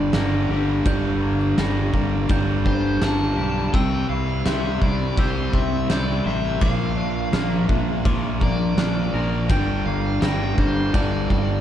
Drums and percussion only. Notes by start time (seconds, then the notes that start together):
0.13 snare, crash
0.85 kick, crash
1.58 snare, crash
1.94 kick
2.29 kick, crash
2.66 kick
3.02 snare, crash
3.74 kick, crash
4.46 snare, crash
4.82 kick
5.18 kick, crash
5.53 kick
5.90 snare, crash
6.61 kick, crash
7.33 snare, crash
7.69 kick
8.05 kick, crash
8.41 kick
8.78 snare, crash
9.50 kick, crash
10.22 snare, crash
10.58 kick
10.94 kick, crash
11.30 kick